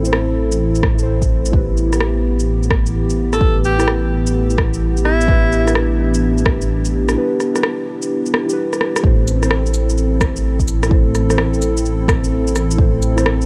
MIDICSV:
0, 0, Header, 1, 6, 480
1, 0, Start_track
1, 0, Tempo, 468750
1, 1574, Time_signature, 4, 2, 24, 8
1, 13782, End_track
2, 0, Start_track
2, 0, Title_t, "Synth keys"
2, 0, Program_c, 0, 88
2, 0, Control_c, 0, 64, 127
2, 0, Note_on_c, 0, 64, 78
2, 0, Note_on_c, 0, 69, 70
2, 0, Note_on_c, 0, 72, 83
2, 28, Note_off_c, 0, 64, 0
2, 28, Note_on_c, 0, 64, 72
2, 49, Note_off_c, 0, 69, 0
2, 49, Note_on_c, 0, 69, 67
2, 69, Note_off_c, 0, 72, 0
2, 69, Note_on_c, 0, 72, 80
2, 967, Note_off_c, 0, 64, 0
2, 967, Note_on_c, 0, 64, 88
2, 1010, Note_off_c, 0, 69, 0
2, 1010, Note_on_c, 0, 69, 78
2, 1051, Note_off_c, 0, 72, 0
2, 1051, Note_on_c, 0, 72, 92
2, 1532, Note_off_c, 0, 64, 0
2, 1550, Note_on_c, 0, 64, 77
2, 1553, Note_off_c, 0, 69, 0
2, 1572, Note_on_c, 0, 67, 70
2, 1574, Note_off_c, 0, 72, 0
2, 1589, Control_c, 0, 64, 0
2, 1590, Note_on_c, 0, 71, 84
2, 1790, Control_c, 0, 64, 127
2, 1922, Note_off_c, 0, 64, 0
2, 1933, Note_off_c, 0, 67, 0
2, 1942, Note_off_c, 0, 71, 0
2, 1950, Note_on_c, 0, 64, 74
2, 1971, Note_on_c, 0, 67, 64
2, 1993, Note_on_c, 0, 71, 77
2, 2001, Note_off_c, 0, 64, 0
2, 2012, Note_off_c, 0, 67, 0
2, 2023, Note_off_c, 0, 71, 0
2, 3474, Note_on_c, 0, 64, 79
2, 3493, Note_on_c, 0, 67, 73
2, 3515, Note_on_c, 0, 71, 88
2, 3844, Note_off_c, 0, 64, 0
2, 3854, Note_off_c, 0, 67, 0
2, 3864, Note_off_c, 0, 71, 0
2, 3873, Note_on_c, 0, 64, 75
2, 3895, Note_on_c, 0, 67, 69
2, 3914, Note_on_c, 0, 71, 78
2, 3923, Note_off_c, 0, 64, 0
2, 3933, Note_off_c, 0, 67, 0
2, 3943, Note_off_c, 0, 71, 0
2, 5395, Note_on_c, 0, 64, 78
2, 5414, Note_on_c, 0, 67, 73
2, 5433, Note_on_c, 0, 71, 88
2, 5764, Note_off_c, 0, 64, 0
2, 5774, Note_off_c, 0, 67, 0
2, 5784, Note_off_c, 0, 71, 0
2, 5788, Note_on_c, 0, 64, 74
2, 5810, Note_on_c, 0, 67, 68
2, 5830, Note_on_c, 0, 71, 83
2, 5840, Note_off_c, 0, 64, 0
2, 5851, Note_off_c, 0, 67, 0
2, 5861, Note_off_c, 0, 71, 0
2, 7312, Note_on_c, 0, 64, 80
2, 7331, Note_on_c, 0, 67, 74
2, 7352, Note_on_c, 0, 71, 88
2, 7683, Note_off_c, 0, 64, 0
2, 7693, Note_off_c, 0, 67, 0
2, 7703, Note_off_c, 0, 71, 0
2, 7713, Note_on_c, 0, 64, 75
2, 7733, Note_on_c, 0, 67, 68
2, 7754, Note_on_c, 0, 71, 81
2, 7763, Note_off_c, 0, 64, 0
2, 7772, Note_off_c, 0, 67, 0
2, 7783, Note_off_c, 0, 71, 0
2, 8652, Note_on_c, 0, 64, 87
2, 8694, Note_on_c, 0, 67, 82
2, 8735, Note_on_c, 0, 71, 100
2, 9214, Note_off_c, 0, 64, 0
2, 9236, Note_off_c, 0, 67, 0
2, 9238, Note_on_c, 0, 64, 81
2, 9256, Note_off_c, 0, 71, 0
2, 9258, Note_on_c, 0, 69, 74
2, 9267, Control_c, 0, 64, 0
2, 9280, Note_on_c, 0, 72, 89
2, 9419, Control_c, 0, 64, 127
2, 9606, Note_off_c, 0, 64, 0
2, 9616, Note_off_c, 0, 69, 0
2, 9627, Note_off_c, 0, 72, 0
2, 9637, Note_on_c, 0, 64, 77
2, 9657, Note_on_c, 0, 69, 67
2, 9678, Note_on_c, 0, 72, 83
2, 9685, Note_off_c, 0, 64, 0
2, 9695, Note_off_c, 0, 69, 0
2, 9705, Note_off_c, 0, 72, 0
2, 11155, Note_on_c, 0, 64, 82
2, 11175, Note_on_c, 0, 69, 74
2, 11196, Note_on_c, 0, 72, 87
2, 11524, Note_off_c, 0, 64, 0
2, 11535, Note_off_c, 0, 69, 0
2, 11545, Note_off_c, 0, 72, 0
2, 11551, Note_on_c, 0, 64, 75
2, 11571, Note_on_c, 0, 69, 68
2, 11593, Note_on_c, 0, 72, 85
2, 11602, Note_off_c, 0, 64, 0
2, 11612, Note_off_c, 0, 69, 0
2, 11623, Note_off_c, 0, 72, 0
2, 13074, Note_on_c, 0, 64, 81
2, 13095, Note_on_c, 0, 69, 76
2, 13116, Note_on_c, 0, 72, 90
2, 13444, Note_off_c, 0, 64, 0
2, 13454, Note_off_c, 0, 69, 0
2, 13465, Note_off_c, 0, 72, 0
2, 13475, Note_on_c, 0, 64, 79
2, 13494, Note_on_c, 0, 69, 72
2, 13514, Note_on_c, 0, 72, 85
2, 13524, Note_off_c, 0, 64, 0
2, 13533, Note_off_c, 0, 69, 0
2, 13543, Note_off_c, 0, 72, 0
2, 13782, End_track
3, 0, Start_track
3, 0, Title_t, "Alto saxophone"
3, 0, Program_c, 1, 65
3, 3412, Note_on_c, 1, 69, 92
3, 3660, Note_off_c, 1, 69, 0
3, 3736, Note_on_c, 1, 67, 86
3, 3991, Note_off_c, 1, 67, 0
3, 5171, Note_on_c, 1, 64, 91
3, 5860, Note_off_c, 1, 64, 0
3, 13782, End_track
4, 0, Start_track
4, 0, Title_t, "Analog synth pad"
4, 0, Program_c, 2, 89
4, 0, Note_on_c, 2, 60, 77
4, 0, Note_on_c, 2, 64, 72
4, 0, Note_on_c, 2, 69, 85
4, 1533, Note_off_c, 2, 60, 0
4, 1534, Note_off_c, 2, 69, 0
4, 1570, Note_on_c, 2, 59, 77
4, 1571, Note_on_c, 2, 67, 85
4, 5374, Note_off_c, 2, 64, 0
4, 5410, Note_on_c, 2, 62, 72
4, 9211, Note_off_c, 2, 59, 0
4, 9211, Note_off_c, 2, 67, 0
4, 9214, Note_off_c, 2, 62, 0
4, 9253, Note_on_c, 2, 60, 80
4, 9253, Note_on_c, 2, 64, 72
4, 9256, Note_on_c, 2, 69, 89
4, 13782, Note_off_c, 2, 60, 0
4, 13782, Note_off_c, 2, 64, 0
4, 13782, Note_off_c, 2, 69, 0
4, 13782, End_track
5, 0, Start_track
5, 0, Title_t, "Detuned saw bass"
5, 0, Program_c, 3, 39
5, 0, Note_on_c, 3, 33, 88
5, 1557, Note_off_c, 3, 33, 0
5, 1569, Note_on_c, 3, 33, 90
5, 7332, Note_off_c, 3, 33, 0
5, 9252, Note_on_c, 3, 33, 88
5, 13782, Note_off_c, 3, 33, 0
5, 13782, End_track
6, 0, Start_track
6, 0, Title_t, "Drums"
6, 50, Note_on_c, 9, 82, 54
6, 130, Note_on_c, 9, 37, 101
6, 152, Note_off_c, 9, 82, 0
6, 233, Note_off_c, 9, 37, 0
6, 530, Note_on_c, 9, 82, 54
6, 632, Note_off_c, 9, 82, 0
6, 769, Note_on_c, 9, 82, 29
6, 849, Note_on_c, 9, 36, 105
6, 851, Note_on_c, 9, 37, 104
6, 872, Note_off_c, 9, 82, 0
6, 952, Note_off_c, 9, 36, 0
6, 953, Note_off_c, 9, 37, 0
6, 1009, Note_on_c, 9, 82, 53
6, 1111, Note_off_c, 9, 82, 0
6, 1247, Note_on_c, 9, 36, 61
6, 1250, Note_on_c, 9, 82, 42
6, 1349, Note_off_c, 9, 36, 0
6, 1353, Note_off_c, 9, 82, 0
6, 1490, Note_on_c, 9, 82, 53
6, 1569, Note_on_c, 9, 36, 113
6, 1592, Note_off_c, 9, 82, 0
6, 1671, Note_off_c, 9, 36, 0
6, 1815, Note_on_c, 9, 82, 28
6, 1917, Note_off_c, 9, 82, 0
6, 1973, Note_on_c, 9, 37, 48
6, 1973, Note_on_c, 9, 82, 51
6, 2053, Note_off_c, 9, 37, 0
6, 2053, Note_on_c, 9, 37, 99
6, 2076, Note_off_c, 9, 82, 0
6, 2155, Note_off_c, 9, 37, 0
6, 2452, Note_on_c, 9, 82, 50
6, 2555, Note_off_c, 9, 82, 0
6, 2693, Note_on_c, 9, 82, 28
6, 2770, Note_on_c, 9, 36, 99
6, 2771, Note_on_c, 9, 37, 99
6, 2795, Note_off_c, 9, 82, 0
6, 2872, Note_off_c, 9, 36, 0
6, 2873, Note_off_c, 9, 37, 0
6, 2930, Note_on_c, 9, 82, 52
6, 3033, Note_off_c, 9, 82, 0
6, 3171, Note_on_c, 9, 82, 41
6, 3273, Note_off_c, 9, 82, 0
6, 3409, Note_on_c, 9, 37, 59
6, 3409, Note_on_c, 9, 82, 51
6, 3490, Note_on_c, 9, 36, 111
6, 3512, Note_off_c, 9, 37, 0
6, 3512, Note_off_c, 9, 82, 0
6, 3593, Note_off_c, 9, 36, 0
6, 3731, Note_on_c, 9, 82, 28
6, 3833, Note_off_c, 9, 82, 0
6, 3887, Note_on_c, 9, 37, 50
6, 3887, Note_on_c, 9, 82, 52
6, 3969, Note_off_c, 9, 37, 0
6, 3969, Note_on_c, 9, 37, 93
6, 3990, Note_off_c, 9, 82, 0
6, 4072, Note_off_c, 9, 37, 0
6, 4369, Note_on_c, 9, 82, 51
6, 4471, Note_off_c, 9, 82, 0
6, 4609, Note_on_c, 9, 82, 28
6, 4690, Note_on_c, 9, 36, 99
6, 4692, Note_on_c, 9, 37, 96
6, 4712, Note_off_c, 9, 82, 0
6, 4792, Note_off_c, 9, 36, 0
6, 4795, Note_off_c, 9, 37, 0
6, 4850, Note_on_c, 9, 82, 51
6, 4952, Note_off_c, 9, 82, 0
6, 5089, Note_on_c, 9, 82, 43
6, 5174, Note_on_c, 9, 37, 50
6, 5192, Note_off_c, 9, 82, 0
6, 5277, Note_off_c, 9, 37, 0
6, 5333, Note_on_c, 9, 82, 49
6, 5409, Note_on_c, 9, 36, 108
6, 5435, Note_off_c, 9, 82, 0
6, 5512, Note_off_c, 9, 36, 0
6, 5655, Note_on_c, 9, 82, 29
6, 5758, Note_off_c, 9, 82, 0
6, 5811, Note_on_c, 9, 37, 51
6, 5811, Note_on_c, 9, 82, 55
6, 5891, Note_off_c, 9, 37, 0
6, 5891, Note_on_c, 9, 37, 94
6, 5914, Note_off_c, 9, 82, 0
6, 5994, Note_off_c, 9, 37, 0
6, 6290, Note_on_c, 9, 82, 53
6, 6392, Note_off_c, 9, 82, 0
6, 6532, Note_on_c, 9, 82, 29
6, 6610, Note_on_c, 9, 36, 98
6, 6613, Note_on_c, 9, 37, 98
6, 6634, Note_off_c, 9, 82, 0
6, 6712, Note_off_c, 9, 36, 0
6, 6715, Note_off_c, 9, 37, 0
6, 6773, Note_on_c, 9, 82, 53
6, 6875, Note_off_c, 9, 82, 0
6, 7014, Note_on_c, 9, 82, 42
6, 7117, Note_off_c, 9, 82, 0
6, 7256, Note_on_c, 9, 37, 66
6, 7256, Note_on_c, 9, 82, 52
6, 7359, Note_off_c, 9, 37, 0
6, 7359, Note_off_c, 9, 82, 0
6, 7580, Note_on_c, 9, 37, 37
6, 7580, Note_on_c, 9, 82, 31
6, 7682, Note_off_c, 9, 37, 0
6, 7682, Note_off_c, 9, 82, 0
6, 7737, Note_on_c, 9, 37, 54
6, 7737, Note_on_c, 9, 82, 57
6, 7817, Note_off_c, 9, 37, 0
6, 7817, Note_on_c, 9, 37, 96
6, 7839, Note_off_c, 9, 82, 0
6, 7919, Note_off_c, 9, 37, 0
6, 8214, Note_on_c, 9, 82, 56
6, 8316, Note_off_c, 9, 82, 0
6, 8457, Note_on_c, 9, 82, 31
6, 8538, Note_on_c, 9, 37, 99
6, 8560, Note_off_c, 9, 82, 0
6, 8641, Note_off_c, 9, 37, 0
6, 8698, Note_on_c, 9, 82, 56
6, 8800, Note_off_c, 9, 82, 0
6, 8939, Note_on_c, 9, 37, 51
6, 8939, Note_on_c, 9, 82, 44
6, 9020, Note_off_c, 9, 37, 0
6, 9020, Note_on_c, 9, 37, 77
6, 9041, Note_off_c, 9, 82, 0
6, 9122, Note_off_c, 9, 37, 0
6, 9177, Note_on_c, 9, 37, 76
6, 9177, Note_on_c, 9, 82, 54
6, 9253, Note_on_c, 9, 36, 121
6, 9279, Note_off_c, 9, 37, 0
6, 9279, Note_off_c, 9, 82, 0
6, 9356, Note_off_c, 9, 36, 0
6, 9499, Note_on_c, 9, 69, 72
6, 9601, Note_off_c, 9, 69, 0
6, 9654, Note_on_c, 9, 37, 55
6, 9654, Note_on_c, 9, 82, 58
6, 9735, Note_off_c, 9, 37, 0
6, 9735, Note_on_c, 9, 37, 102
6, 9756, Note_off_c, 9, 82, 0
6, 9837, Note_off_c, 9, 37, 0
6, 9893, Note_on_c, 9, 82, 32
6, 9974, Note_on_c, 9, 69, 69
6, 9995, Note_off_c, 9, 82, 0
6, 10076, Note_off_c, 9, 69, 0
6, 10134, Note_on_c, 9, 82, 60
6, 10217, Note_off_c, 9, 82, 0
6, 10217, Note_on_c, 9, 82, 32
6, 10319, Note_off_c, 9, 82, 0
6, 10453, Note_on_c, 9, 36, 106
6, 10455, Note_on_c, 9, 37, 106
6, 10455, Note_on_c, 9, 69, 72
6, 10555, Note_off_c, 9, 36, 0
6, 10557, Note_off_c, 9, 37, 0
6, 10557, Note_off_c, 9, 69, 0
6, 10613, Note_on_c, 9, 82, 59
6, 10715, Note_off_c, 9, 82, 0
6, 10850, Note_on_c, 9, 36, 60
6, 10852, Note_on_c, 9, 82, 49
6, 10934, Note_on_c, 9, 69, 72
6, 10952, Note_off_c, 9, 36, 0
6, 10954, Note_off_c, 9, 82, 0
6, 11036, Note_off_c, 9, 69, 0
6, 11090, Note_on_c, 9, 37, 68
6, 11090, Note_on_c, 9, 82, 58
6, 11172, Note_on_c, 9, 36, 122
6, 11193, Note_off_c, 9, 37, 0
6, 11193, Note_off_c, 9, 82, 0
6, 11274, Note_off_c, 9, 36, 0
6, 11416, Note_on_c, 9, 37, 37
6, 11416, Note_on_c, 9, 69, 70
6, 11519, Note_off_c, 9, 37, 0
6, 11519, Note_off_c, 9, 69, 0
6, 11572, Note_on_c, 9, 37, 54
6, 11572, Note_on_c, 9, 82, 58
6, 11654, Note_off_c, 9, 37, 0
6, 11654, Note_on_c, 9, 37, 104
6, 11674, Note_off_c, 9, 82, 0
6, 11756, Note_off_c, 9, 37, 0
6, 11814, Note_on_c, 9, 82, 33
6, 11897, Note_on_c, 9, 69, 70
6, 11916, Note_off_c, 9, 82, 0
6, 11999, Note_off_c, 9, 69, 0
6, 12054, Note_on_c, 9, 82, 60
6, 12138, Note_off_c, 9, 82, 0
6, 12138, Note_on_c, 9, 82, 33
6, 12240, Note_off_c, 9, 82, 0
6, 12372, Note_on_c, 9, 36, 110
6, 12378, Note_on_c, 9, 37, 110
6, 12378, Note_on_c, 9, 69, 69
6, 12474, Note_off_c, 9, 36, 0
6, 12481, Note_off_c, 9, 37, 0
6, 12481, Note_off_c, 9, 69, 0
6, 12534, Note_on_c, 9, 82, 60
6, 12636, Note_off_c, 9, 82, 0
6, 12773, Note_on_c, 9, 82, 47
6, 12858, Note_on_c, 9, 37, 55
6, 12858, Note_on_c, 9, 69, 72
6, 12875, Note_off_c, 9, 82, 0
6, 12960, Note_off_c, 9, 37, 0
6, 12960, Note_off_c, 9, 69, 0
6, 13014, Note_on_c, 9, 82, 58
6, 13091, Note_on_c, 9, 36, 123
6, 13116, Note_off_c, 9, 82, 0
6, 13194, Note_off_c, 9, 36, 0
6, 13335, Note_on_c, 9, 69, 68
6, 13438, Note_off_c, 9, 69, 0
6, 13494, Note_on_c, 9, 37, 51
6, 13494, Note_on_c, 9, 82, 56
6, 13578, Note_off_c, 9, 37, 0
6, 13578, Note_on_c, 9, 37, 111
6, 13596, Note_off_c, 9, 82, 0
6, 13680, Note_off_c, 9, 37, 0
6, 13736, Note_on_c, 9, 82, 33
6, 13782, Note_off_c, 9, 82, 0
6, 13782, End_track
0, 0, End_of_file